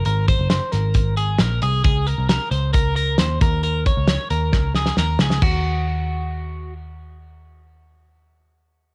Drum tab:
CC |----------------|----------------|----------------|x---------------|
HH |x-x-x-x-x-x-x-x-|x-x-x-x-x-x-x-x-|x-x-x-x---------|----------------|
SD |----o-o-----o---|----o-------o---|----o---o-ooo-oo|----------------|
BD |--o-----o-------|o-------o-----o-|--o-----o-------|o---------------|

CC |----------------|
HH |----------------|
SD |----------------|
BD |----------------|